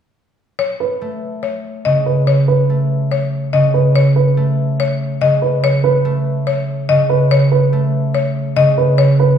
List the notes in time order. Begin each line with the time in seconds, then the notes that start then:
0.59 C#5
0.80 B4
1.01 A3
1.43 C#5
1.85 C#3 D#5
2.06 B4
2.27 C#5
2.48 B4
2.70 A3
3.11 C#5
3.53 C#3 D#5
3.74 B4
3.96 C#5
4.16 B4
4.37 A3
4.80 C#5
5.21 C#3 D#5
5.42 B4
5.64 C#5
5.84 B4
6.05 A3
6.47 C#5
6.89 C#3 D#5
7.10 B4
7.31 C#5
7.52 B4
7.73 A3
8.15 C#5
8.56 C#3 D#5
8.78 B4
8.98 C#5
9.20 B4